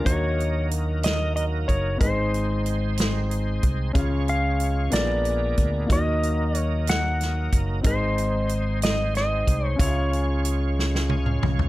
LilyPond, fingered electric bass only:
\new Staff \with { instrumentName = "Fingered electric bass" } { \clef bass \time 6/8 \key des \major \tempo 4. = 62 ees,2~ ees,8 ges,,8 | aes,,2~ aes,,8 c,8 | des,4. bes,,4 d,8 | ees,2~ ees,8 ges,,8 |
aes,,2~ aes,,8 c,8 | des,2~ des,8 c,8 | }